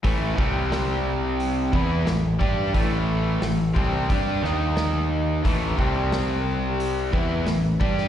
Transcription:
<<
  \new Staff \with { instrumentName = "Overdriven electric guitar" } { \clef bass \time 4/4 \key c \lydian \tempo 4 = 89 <a, e a>8 <c g c'>2 <e b e'>8 <a, e>8 <g d' g'>8 | <a, e a>4 <a, e>8 <c g c'>8 <g d' g'>8 <dis ais dis'>4. | <a, e a>8 <c g c'>2 <e b e'>8 <a, e>8 <g d' g'>8 | }
  \new Staff \with { instrumentName = "Overdriven electric guitar" } { \clef bass \time 4/4 \key c \lydian <a, e a>8 <c g c'>2 <e b e'>8 <a, e>8 <g d' g'>8 | <a, e a>4 <a, e>8 <c g c'>8 <g d' g'>8 <dis ais dis'>4. | <a, e a>8 <c g c'>2 <e b e'>8 <a, e>8 <g d' g'>8 | }
  \new Staff \with { instrumentName = "Fingered electric bass" } { \clef bass \time 4/4 \key c \lydian a,,8 c,2 e,8 a,,8 g,8 | a,,4 a,,8 c,8 g,8 dis,4. | a,,8 c,2 e,8 a,,8 g,8 | }
  \new DrumStaff \with { instrumentName = "Drums" } \drummode { \time 4/4 <hho bd>8 bd8 <hho sn>4 hho8 bd8 <hho sn>8 bd8 | <hho bd>4 <hho sn>8 bd8 <hho bd>8 sn8 <hho sn>4 | <hho bd>8 bd8 <hho sn>4 hho8 bd8 <hho sn>8 bd16 sn16 | }
>>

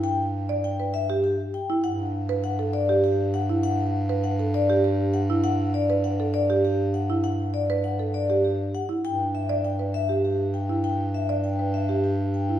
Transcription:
<<
  \new Staff \with { instrumentName = "Vibraphone" } { \time 3/4 \key e \minor \tempo 4 = 100 g''16 r8. g''16 r16 e''16 r16 g'16 r16 g''16 r16 | fis''16 r8. fis''16 r16 d''16 r16 g'16 r16 fis''16 r16 | fis''16 r8. fis''16 r16 d''16 r16 g'16 r16 fis''16 r16 | fis''16 r16 d''16 r16 fis''16 r16 d''16 r16 g'16 r16 fis''16 r16 |
fis''16 r16 d''16 r16 fis''16 r16 d''16 r16 g'16 r16 fis''16 r16 | g''16 r16 e''16 r16 g''16 r16 e''16 r16 g'16 r16 g''16 r16 | g''16 r16 e''16 r16 g''16 r16 e''16 r16 g'16 r16 g''16 r16 | }
  \new Staff \with { instrumentName = "Marimba" } { \time 3/4 \key e \minor r8. d''16 r16 b'16 r16 g'16 r8. e'16 | r8. b'16 r16 a'16 r16 g'16 r8. e'16 | r8. b'16 r16 a'16 r16 g'16 r8. e'16 | r8. b'16 r16 a'16 r16 g'16 r8. e'16 |
r8. b'16 r16 a'16 r16 g'16 r8. e'16 | r8. d''16 r16 b'16 r16 g'16 r8. e'16 | r8. d''16 r16 b'16 r16 g'16 r8. e'16 | }
  \new Staff \with { instrumentName = "Bass clarinet" } { \clef bass \time 3/4 \key e \minor g,2. | g,2.~ | g,2.~ | g,2.~ |
g,2. | g,2.~ | g,2. | }
>>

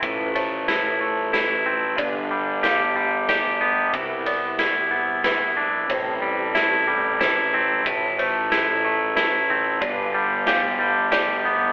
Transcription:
<<
  \new Staff \with { instrumentName = "Felt piano" } { \time 3/4 \key f \lydian \tempo 4 = 92 r8 c''4 r8 a'4 | d''4 f''4 d''4 | r8 d''4 r8 b'4 | c''4 e''4 c''4 |
r8 c''4 r8 a'4 | d''4 f''4 d''4 | }
  \new Staff \with { instrumentName = "Pedal steel guitar" } { \time 3/4 \key f \lydian << { <f e'>2. | <g d' b'>2. | <c b e'>2. | <g c'>2. |
<f e'>2. | <g d' b'>2. | } \\ { a2. | f'2. | r2. | a2.~ |
a2. | f'2. | } >> }
  \new Staff \with { instrumentName = "Clean electric guitar" } { \time 3/4 \key f \lydian a,8 a8 e'8 a8 e'8 c'8 | g,8 g8 g'8 g8 g'8 b8 | c8 b8 e'8 b8 e'8 d'8 | a,8 g8 e'8 g8 e'8 c'8 |
a,8 a8 e'8 a8 e'8 c'8 | g,8 g8 g'8 g8 g'8 b8 | }
  \new Staff \with { instrumentName = "Fingered electric bass" } { \clef bass \time 3/4 \key f \lydian a,,2. | g,,2. | c,2. | a,,2. |
a,,2. | g,,2. | }
  \new DrumStaff \with { instrumentName = "Drums" } \drummode { \time 3/4 <bd cymr>8 cymr8 <cymr sn>4 <cymr sn>4 | <bd cymr>4 <cymr sn>4 <cymr sn>4 | <bd cymr>8 cymr8 <cymr sn>4 <cymr sn>4 | <bd cymr>4 <cymr sn>4 <cymr sn>4 |
<bd cymr>8 cymr8 <cymr sn>4 <cymr sn>4 | <bd cymr>4 <cymr sn>4 <cymr sn>4 | }
>>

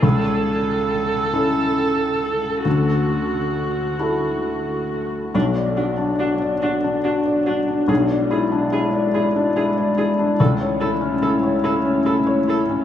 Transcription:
<<
  \new Staff \with { instrumentName = "Viola" } { \time 6/8 \key b \dorian \tempo 4. = 47 a'2. | fis'2~ fis'8. r16 | d'8 d'8 d'8 d'8 d'8 d'8 | gis'8 gis'8 gis'8 gis'8 gis'8 gis'8 |
a'8 a'8 a'8 a'8 a'8 a'8 | }
  \new Staff \with { instrumentName = "Felt piano" } { \time 6/8 \key b \dorian cis,4. <cis' e' a'>4. | d,4. <e' fis' a'>4. | b,,16 d''16 fis'16 d'16 fis'16 d''16 fis'16 d'16 fis'16 d''16 fis'16 d'16 | b,,16 d''16 e'16 d'16 e'16 d''16 e'16 d'16 e'16 d''16 e'16 d'16 |
cis,16 cis''16 e'16 cis'16 e'16 cis''16 e'16 cis'16 e'16 cis''16 e'16 cis'16 | }
  \new Staff \with { instrumentName = "Ambient pad" } { \time 6/8 \key b \dorian << { r2. | r2. | <fis d''>2. | <gis d''>2. |
<a cis''>2. | } \\ { r2. | r2. | d'2. | e'2.~ |
e'2. | } >> }
>>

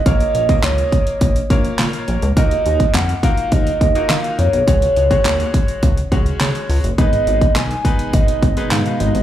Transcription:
<<
  \new Staff \with { instrumentName = "Soft synth lead" } { \time 4/4 \key gis \dorian \tempo 4 = 104 dis''4 cis''2 r4 | dis''4 fis''8 eis''8 dis''8 dis''8 eis''8 cis''8~ | cis''2~ cis''8 r4. | dis''4 gis''4 dis''4 eis''16 eis''16 dis''8 | }
  \new Staff \with { instrumentName = "Grand piano" } { \time 4/4 \key gis \dorian <ais cis' eis' ais' cis''>8. <ais cis' eis' ais' dis''>4. r16 <ais cis' eis' ais' cis''>4~ <ais cis' eis' ais' cis''>16 r16 | <ais dis' eis' fis' ais'>4~ <ais dis' eis' fis' ais'>16 r16 <ais dis' eis' fis' ais'>4 r16 <ais dis' eis' fis' ais'>4 r16 | <gis cis' fis' gis' cis''>8. <gis cis' fis' gis' cis''>4. r16 <gis cis' fis' gis' cis''>4~ <gis cis' fis' gis' cis''>16 r16 | <gis b dis' gis' b'>4~ <gis b dis' gis' b'>16 r16 <gis b dis' gis' b'>4 r16 <gis b dis' gis' b'>4 r16 | }
  \new Staff \with { instrumentName = "Ambient pad" } { \clef bass \time 4/4 \key gis \dorian r1 | r1 | r1 | <b, dis gis dis'>1 | }
  \new Staff \with { instrumentName = "Analog synth bass" } { \clef bass \time 4/4 \key gis \dorian ais,,8 ais,,8 cis,8 r8 ais,,8 ais,,8 ais,16 r16 ais,,16 cis,16 | dis,8 dis,8 eis,8 r8 dis,8 dis,8 dis16 r16 eis,16 b,,16 | cis,8 cis,8 dis,8 r8 cis,8 cis,8 cis16 r16 cis,16 fis,,16 | gis,,8 gis,,8 b,,8 r8 gis,,8 gis,,8 gis,16 r16 gis,,16 gis,,16 | }
  \new DrumStaff \with { instrumentName = "Drums" } \drummode { \time 4/4 <hh bd>16 hh16 hh16 <hh bd>16 <hc hh sn>16 hh16 <hh bd>16 hh16 <hh bd>16 hh16 <hh bd>16 hh16 <hc hh sn>16 hh16 hh16 hh16 | <hh bd>16 hh16 hh16 <hh bd>16 <hc hh sn>16 hh16 <hh bd>16 hh16 <hh bd>16 hh16 <hh bd>16 hh16 <hc hh sn>16 hh16 hh16 hh16 | <hh bd>16 hh16 hh16 <hh bd>16 <hc hh sn>16 hh16 <hh bd>16 hh16 <hh bd>16 hh16 <hh bd>16 hh16 <hc hh sn>16 hh16 hho16 hh16 | <hh bd>16 hh16 hh16 <hh bd>16 <hc hh sn>16 hh16 <hh bd>16 hh16 <hh bd>16 hh16 <hh bd>16 hh16 <hc hh sn>16 hh16 hh16 hh16 | }
>>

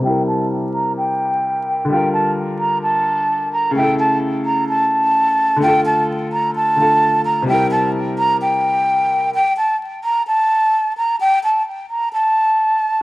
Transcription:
<<
  \new Staff \with { instrumentName = "Flute" } { \time 4/4 \key d \minor \tempo 4 = 129 g''8 a''8 r8 bes''8 g''2 | g''8 a''8 r8 bes''8 a''4. bes''8 | g''8 a''8 r8 bes''8 a''2 | g''8 a''8 r8 bes''8 a''4. bes''8 |
g''8 a''8 r8 bes''8 g''2 | g''8 a''8 r8 bes''8 a''4. bes''8 | g''8 a''8 r8 bes''8 a''2 | }
  \new Staff \with { instrumentName = "Grand piano" } { \time 4/4 \key d \minor <c g e' bes'>1 | <d g f' bes'>1 | <cis a e' a'>1 | <d a f' a'>2~ <d a f' a'>8 <d a f' a'>4. |
<c g e' bes'>1 | r1 | r1 | }
>>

